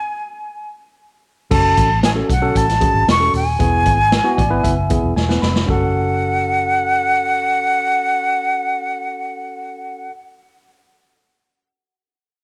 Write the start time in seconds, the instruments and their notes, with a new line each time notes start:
Already playing: flute G#5
1.50 fingered electric bass F#1, tine electric piano C#4 F#4 A4, flute A5, kick, crash
1.77 fingered electric bass A1, kick, closed hi-hat
2.03 flute G#5, snare, closed hi-hat
2.16 tine electric piano C#4 F#4 A4
2.29 fingered electric bass B1, flute F#5, kick, closed hi-hat
2.42 tine electric piano C#4 F#4 A4
2.55 fingered electric bass A1, flute A5, kick, closed hi-hat
2.69 snare, closed hi-hat
2.80 tine electric piano C#4 F#4 G#4, kick, closed hi-hat
2.94 fingered electric bass G#1
3.08 fingered electric bass E1, flute C#6, snare, closed hi-hat
3.20 tine electric piano C#4 F#4 A4, snare
3.34 fingered electric bass D#1, flute G#5, open hi-hat
3.59 fingered electric bass E1, tine electric piano B3 E4 G#4, kick, closed hi-hat
3.86 fingered electric bass G#1, kick, closed hi-hat
4.12 snare, closed hi-hat
4.24 tine electric piano B3 E4 F#4
4.37 fingered electric bass A1, tine electric piano D5, kick, closed hi-hat
4.50 fingered electric bass G#1, tine electric piano B3 E4 B4
4.63 fingered electric bass F#1, tine electric piano E5, kick, closed hi-hat
4.90 tine electric piano B3 E4 G#4, kick, closed hi-hat
5.03 fingered electric bass E1
5.16 fingered electric bass E1, tine electric piano G#5, snare
5.29 tine electric piano B3 E4 B4, snare
5.42 fingered electric bass F1, tine electric piano B5, snare
5.56 snare
5.66 fingered electric bass F#1, tine electric piano C#4 F#4, flute F#5, kick
5.70 tine electric piano A4